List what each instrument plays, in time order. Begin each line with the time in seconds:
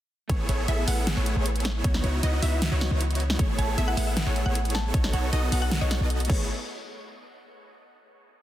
0.28 808-style bass A1, synth keys A3 G#4 B4 C#5, supersaw synth B3 E4 G#4 A4 C#5, synth pluck C#5, kick, closed hi-hat
0.49 808-style bass A1, supersaw synth B3 E4 G#4 A4 C#5, synth pluck C#5, closed hi-hat
0.68 808-style bass A1, supersaw synth B3 E4 G#4 A4 E5, synth pluck E5, closed hi-hat
0.87 808-style bass A1, synth keys A3 G#4 B4 C#5, supersaw synth B3 E4 G#4 A4 F#5, synth pluck F#5, open hi-hat
1.07 snare, closed hi-hat
1.17 808-style bass A1, supersaw synth B3 E4 G#4 A4 C#5, synth pluck C#5
1.24 synth keys A3 B4 G#5, closed hi-hat
1.28 synth keys C#5
1.36 808-style bass A1, supersaw synth B3 E4 G#4 A4 C#5, synth pluck C#5
1.46 closed hi-hat
1.56 closed hi-hat
1.60 closed hi-hat
1.65 snare, closed hi-hat
1.82 808-style bass C#2, synth keys C#3 B3 E4 F#4 D#5, supersaw synth B3 D#4 E4 F#4 C#5, synth pluck C#5, kick, closed hi-hat
1.94 snare
2.04 808-style bass C#2, supersaw synth B3 D#4 E4 F#4 C#5, synth pluck C#5, closed hi-hat
2.23 808-style bass C#2, supersaw synth B3 D#4 E4 F#4 D#5, synth pluck D#5, closed hi-hat
2.42 808-style bass C#2, synth keys C#3 B3 E4 F#4 D#5, supersaw synth B3 D#4 E4 F#4 E5, synth pluck E5, open hi-hat
2.62 snare, closed hi-hat
2.72 808-style bass C#2, supersaw synth B3 D#4 E4 F#4 C#5, synth pluck C#5
2.79 synth keys C#3 E3 B3 F#4, snare, closed hi-hat
2.83 synth keys D#5
2.91 808-style bass C#2, supersaw synth B3 D#4 E4 F#4 C#5, synth pluck C#5
3.01 closed hi-hat
3.11 closed hi-hat
3.15 closed hi-hat
3.20 closed hi-hat
3.30 snare
3.37 808-style bass A1, synth keys A3 G#4 B4, supersaw synth B3 E4 G#4 A4 C#5, synth pluck C#5, kick, closed hi-hat
3.41 synth keys C#5
3.58 808-style bass A1, supersaw synth B3 E4 G#4 A4 C#5, synth pluck C#5 A5, closed hi-hat
3.78 808-style bass A1, supersaw synth B3 E4 G#4 A4 E5, synth pluck E5, closed hi-hat
3.88 synth pluck F#5
3.96 808-style bass A1, synth keys A3 G#4 B4 C#5, supersaw synth B3 E4 G#4 A4 F#5, synth pluck E5 F#5, open hi-hat
4.07 synth pluck E5
4.17 snare, closed hi-hat
4.27 808-style bass A1, supersaw synth B3 E4 G#4 A4 C#5, synth pluck C#5
4.34 synth keys A3 B4 G#5, closed hi-hat
4.38 synth keys C#5
4.46 808-style bass A1, supersaw synth B3 E4 G#4 A4 C#5, synth pluck C#5 F#5
4.55 closed hi-hat
4.65 closed hi-hat
4.70 closed hi-hat
4.75 synth pluck A5, snare
4.92 808-style bass B1, synth keys B3 A4 C#5 D#5, supersaw synth B3 D#4 F#4 A4 C#5, synth pluck C#5, kick, closed hi-hat
5.04 snare
5.13 808-style bass B1, supersaw synth B3 D#4 F#4 A4 C#5, synth pluck C#5 F#5, closed hi-hat
5.33 808-style bass B1, supersaw synth B3 D#4 F#4 A4 D#5, synth pluck D#5, closed hi-hat
5.51 808-style bass B1, synth keys B3 A4 C#5 D#5, supersaw synth B3 D#4 F#4 A4 F#5, synth pluck F#5, open hi-hat
5.62 synth pluck F#5
5.71 synth pluck F#5, snare, closed hi-hat
5.81 808-style bass B1, supersaw synth B3 D#4 F#4 A4 C#5, synth pluck C#5 D#5
5.91 snare, closed hi-hat
6.01 808-style bass B1, supersaw synth B3 D#4 F#4 A4 D#5, synth pluck D#5
6.10 closed hi-hat
6.20 closed hi-hat
6.25 synth keys A3 G#4, closed hi-hat
6.29 808-style bass A1, supersaw synth B3 E4 G#4 A4 C#5, synth keys B4 C#5, synth pluck C#5, kick, crash